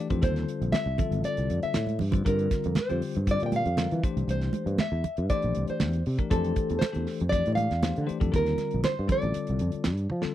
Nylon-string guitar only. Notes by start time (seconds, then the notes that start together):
0.23 C5
0.72 E5
1.25 D5
1.63 E5
2.27 A#4
2.79 C5
3.31 D5
3.46 G5
3.56 F5
4.31 C5
4.80 E5
5.30 D5
5.70 C5
6.31 A4
6.79 C5
7.29 D5
7.55 F5
8.36 A#4
8.85 C5
9.12 D5